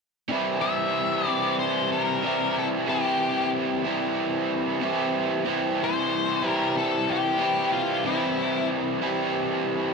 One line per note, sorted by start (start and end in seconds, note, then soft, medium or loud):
0.29 1.28 C3 medium
0.29 1.28 E3 medium
0.29 1.26 G3 medium
0.29 1.26 C4 medium
0.29 1.25 E4 medium
0.61 1.27 E5 medium
1.25 2.22 C3 medium
1.25 2.23 E3 medium
1.25 2.23 G3 medium
1.25 2.25 C4 medium
1.25 2.25 E4 medium
1.25 1.55 D5 medium
1.59 1.92 C5 medium
1.92 2.58 A#4 medium
2.22 2.87 C3 medium
2.22 2.87 E3 medium
2.22 2.88 G3 medium
2.22 2.89 C4 medium
2.22 2.89 E4 medium
2.58 2.67 A4 medium
2.87 3.87 C3 medium
2.87 3.86 E3 medium
2.87 3.86 G3 medium
2.87 3.85 C4 medium
2.87 3.83 E4 medium
2.87 3.50 G4 medium
3.84 4.80 C3 medium
3.84 4.81 E3 medium
3.84 4.82 G3 medium
3.84 4.82 C4 medium
3.84 4.83 E4 medium
4.80 5.44 C3 medium
4.80 5.46 E3 medium
4.80 5.46 G3 medium
4.80 5.47 C4 medium
4.80 5.47 E4 medium
5.45 6.45 C3 medium
5.45 6.44 E3 medium
5.45 6.43 G3 medium
5.45 6.42 C4 medium
5.45 6.42 E4 medium
5.84 6.48 C5 loud
6.42 7.38 C3 medium
6.42 7.39 E3 medium
6.42 7.40 G3 medium
6.42 7.41 C4 medium
6.42 7.41 E4 medium
6.48 6.75 A#4 loud
6.77 7.10 A4 medium
7.10 7.70 G4 medium
7.38 8.04 C3 medium
7.38 8.05 E3 medium
7.38 8.06 G3 medium
7.38 8.06 C4 medium
7.38 8.07 E4 medium
7.72 8.05 F4 medium
8.04 9.05 C3 medium
8.04 9.04 E3 medium
8.04 9.03 G3 medium
8.04 9.03 C4 medium
8.04 8.67 E4 medium
8.04 9.01 E4 medium
9.02 9.94 C3 medium
9.02 9.94 E3 medium
9.02 9.94 G3 medium
9.02 9.94 C4 medium
9.02 9.94 E4 medium